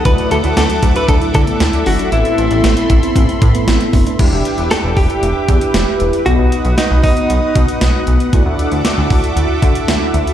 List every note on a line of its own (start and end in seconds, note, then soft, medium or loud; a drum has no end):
0.00 2.08 F#5 medium
0.05 0.16 D2 loud
0.05 2.08 F#3 medium
0.05 2.08 A3 medium
0.05 2.08 D4 medium
0.05 2.08 E4 medium
0.05 0.29 F#4 loud
0.05 4.15 A4 medium
0.05 0.31 B4 loud
0.05 4.15 E5 medium
0.05 2.10 D6 medium
0.05 kick loud
0.05 closed hi-hat medium
0.18 closed hi-hat soft
0.31 0.42 D2 loud
0.31 0.43 F#4 medium
0.31 0.56 A4 medium
0.31 closed hi-hat medium
0.44 0.55 D2 loud
0.44 0.56 E4 medium
0.44 closed hi-hat medium
0.57 0.68 D2 loud
0.57 0.80 D4 medium
0.57 0.96 A4 medium
0.57 snare loud
0.57 closed hi-hat medium
0.70 closed hi-hat medium
0.83 0.94 D2 loud
0.83 0.95 F#4 medium
0.83 kick medium
0.83 closed hi-hat medium
0.96 1.08 F#4 medium
0.96 1.09 B4 loud
0.96 closed hi-hat medium
1.09 1.20 D2 loud
1.09 1.20 D4 medium
1.09 1.16 A4 loud
1.09 kick loud
1.09 closed hi-hat medium
1.22 1.33 E4 medium
1.22 closed hi-hat soft
1.34 1.46 D3 loud
1.34 1.46 E4 medium
1.34 1.88 A4 loud
1.34 kick loud
1.34 closed hi-hat medium
1.47 1.59 B3 medium
1.47 closed hi-hat medium
1.60 1.72 D2 loud
1.60 1.84 E4 medium
1.60 snare loud
1.60 closed hi-hat medium
1.73 closed hi-hat soft
1.86 1.97 G1 loud
1.86 1.98 D4 medium
1.86 2.12 F#4 medium
1.86 open hi-hat medium
1.99 2.11 D4 medium
1.99 closed hi-hat medium
2.12 2.23 A1 loud
2.12 4.15 A3 medium
2.12 4.15 B3 medium
2.12 4.15 C4 medium
2.12 4.15 E4 medium
2.12 2.36 E4 loud
2.12 3.64 E4 medium
2.12 4.17 B5 medium
2.12 4.17 C6 medium
2.12 closed hi-hat medium
2.25 closed hi-hat soft
2.38 2.49 A1 loud
2.38 2.50 E4 medium
2.38 closed hi-hat medium
2.51 2.62 A1 loud
2.51 2.63 C4 medium
2.51 closed hi-hat soft
2.64 2.75 A1 loud
2.64 2.87 B3 medium
2.64 snare loud
2.64 closed hi-hat medium
2.77 closed hi-hat medium
2.90 3.01 A1 loud
2.90 3.01 E4 medium
2.90 kick loud
2.90 closed hi-hat medium
3.03 3.14 E4 medium
3.03 closed hi-hat medium
3.16 3.27 A1 loud
3.16 3.27 C4 medium
3.16 kick loud
3.16 closed hi-hat medium
3.28 3.40 E4 medium
3.28 closed hi-hat soft
3.42 3.53 A2 loud
3.42 3.53 E4 medium
3.42 kick loud
3.42 closed hi-hat medium
3.55 3.66 B3 medium
3.55 closed hi-hat medium
3.67 3.78 A1 loud
3.67 3.91 E4 medium
3.67 snare loud
3.67 closed hi-hat medium
3.81 closed hi-hat soft
3.93 4.04 F#1 medium
3.93 4.05 D4 medium
3.93 kick medium
3.93 open hi-hat medium
4.06 4.18 D4 medium
4.06 closed hi-hat medium
4.19 4.30 E1 loud
4.19 6.22 D4 medium
4.19 6.22 E4 medium
4.19 6.22 G4 medium
4.19 8.29 B4 medium
4.19 6.24 E5 medium
4.19 6.24 G5 medium
4.19 6.24 D6 medium
4.19 kick loud
4.19 closed hi-hat medium
4.19 crash loud
4.32 4.43 E1 loud
4.45 closed hi-hat medium
4.58 4.69 E1 medium
4.58 closed hi-hat soft
4.71 4.98 A4 loud
4.71 snare loud
4.71 closed hi-hat medium
4.84 4.95 E1 loud
4.97 5.08 E1 loud
4.97 6.22 G4 loud
4.97 kick medium
4.97 open hi-hat medium
5.10 closed hi-hat medium
5.23 5.34 E1 loud
5.23 closed hi-hat medium
5.48 5.59 E2 loud
5.48 kick loud
5.48 closed hi-hat medium
5.61 closed hi-hat medium
5.74 5.85 E1 loud
5.74 snare loud
5.74 closed hi-hat medium
6.00 6.11 E1 medium
6.00 closed hi-hat medium
6.13 closed hi-hat medium
6.26 6.37 B1 loud
6.26 8.29 B3 medium
6.26 8.29 D#4 medium
6.26 6.77 F#4 loud
6.26 8.29 F#4 medium
6.26 8.31 D#5 medium
6.26 10.34 F#5 medium
6.26 8.31 D#6 medium
6.26 closed hi-hat medium
6.39 6.50 B1 loud
6.52 closed hi-hat medium
6.65 6.76 B1 loud
6.65 closed hi-hat soft
6.78 7.02 D#4 medium
6.78 snare loud
6.78 closed hi-hat medium
6.91 7.02 B1 loud
7.04 7.15 B1 loud
7.04 8.03 D#4 medium
7.04 kick medium
7.04 open hi-hat medium
7.17 closed hi-hat medium
7.29 7.40 B1 loud
7.29 closed hi-hat medium
7.55 7.66 B2 loud
7.55 kick loud
7.55 closed hi-hat medium
7.68 closed hi-hat medium
7.81 7.92 B1 loud
7.81 snare loud
7.81 closed hi-hat medium
8.07 8.18 B1 loud
8.07 closed hi-hat medium
8.20 closed hi-hat medium
8.33 8.44 D2 loud
8.33 10.34 D4 medium
8.33 10.34 E4 medium
8.33 10.34 F#4 medium
8.33 10.34 A4 medium
8.33 10.34 E5 medium
8.33 10.34 D6 medium
8.33 kick loud
8.33 closed hi-hat medium
8.46 8.57 D2 medium
8.59 closed hi-hat medium
8.72 8.83 D2 loud
8.72 closed hi-hat soft
8.85 snare loud
8.85 closed hi-hat medium
8.98 9.09 D2 loud
9.10 9.21 D2 loud
9.10 kick medium
9.10 open hi-hat medium
9.24 closed hi-hat medium
9.36 9.47 D2 loud
9.36 closed hi-hat medium
9.62 9.73 D3 loud
9.62 kick loud
9.62 closed hi-hat medium
9.75 closed hi-hat medium
9.88 9.99 D2 loud
9.88 snare loud
9.88 closed hi-hat medium
10.14 10.25 D2 loud
10.14 closed hi-hat medium
10.27 closed hi-hat medium